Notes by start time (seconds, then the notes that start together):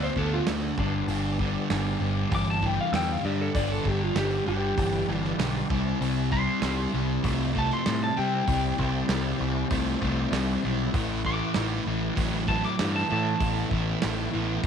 Already playing: D3 A3 B3 F#4 D5
0.03 C5
0.16 D2 D3 B3 A4, kick
0.33 F4
0.47 D2 D3 A3 D4, snare, open hi-hat
0.78 G1 G2 D3 B3 D4 G4 D5, kick
1.08 G1 G2 D3, open hi-hat
1.39 G2 D3, kick
1.70 G1 G2 D3, snare, open hi-hat
2.00 G1 G2 D3
2.31 G1 G2 E3, kick, open hi-hat
2.35 D6
2.50 A5
2.62 G2 E3 G5, kick
2.81 F5
2.92 E2 G2 D3 G5, snare, open hi-hat
3.12 F5
3.22 G2 D3 G4 B4 D5
3.41 A4
3.55 G1 G2 D3 D5, kick, open hi-hat
3.72 A4
3.85 G1 G2 D3 G4, kick
4.03 F4
4.15 G1 G2 D3 G4, snare, open hi-hat
4.46 G1 G2 D3 G4
4.78 G1 G2 E3, kick, open hi-hat
5.08 G1 G2 E3
5.24 snare
5.39 B1 G2 D3, snare, open hi-hat
5.70 C2 C3 G3 C4 E4 D5, kick
6.01 C2 C3 G3, open hi-hat
6.31 C3 G3 C6, kick
6.61 C2 C3 G3, snare, open hi-hat
6.92 C2 C3 G3
7.23 C2 C3 A3, kick, open hi-hat
7.53 C3 A3, kick
7.59 A5
7.71 C6, snare
7.86 A2 C3 G3, snare, open hi-hat
8.04 A5
8.16 C3 G3 E4 C5 D5 G5
8.46 C2 C3 G3, kick, open hi-hat
8.78 C2 C3 G3, kick
9.09 C2 C3 G3, snare, open hi-hat
9.40 C2 C3 G3
9.70 C2 C3 A3, kick, open hi-hat
10.01 C2 C3 A3, kick
10.31 C2 C3 G3, snare, open hi-hat
10.62 B1 C3 G3
10.92 A1 A2 E3 A3 E4 B4, kick, open hi-hat
11.25 A2 E3 D6, kick
11.54 A1 A2 E3, snare, open hi-hat
11.86 A1 A2 E3
12.17 A1 A2 F#3, kick, open hi-hat
12.48 A2 F#3 A5, kick
12.64 D6, snare
12.79 G2 A2 E3, snare, open hi-hat
12.96 A5
13.09 A2 E3 A5
13.39 A1 A2 E3 A3 B3 E4, kick, open hi-hat
13.69 A1 A2 E3, kick
14.01 A1 A2 E3, snare, open hi-hat
14.31 A2 E3
14.35 A1
14.62 A2 F#3, kick